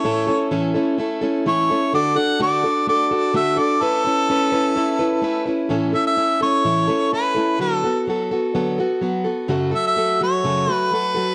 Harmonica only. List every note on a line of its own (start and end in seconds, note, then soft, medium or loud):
0.00 0.48 C#5 medium
1.49 1.91 C#5 loud
1.95 2.19 D5 loud
2.18 2.41 F#5 medium
2.42 2.85 D5 loud
2.89 3.32 D5 loud
3.36 3.60 E5 loud
3.59 3.84 D5 medium
3.83 5.47 A4 loud
5.95 6.05 E5 medium
6.07 6.39 E5 loud
6.43 7.09 C#5 loud
7.14 7.57 B4 medium
7.61 8.04 A4 medium
9.75 9.85 E5 medium
9.87 10.19 E5 loud
10.23 10.72 C#5 loud
10.72 10.94 B4 loud
10.94 11.35 B4 medium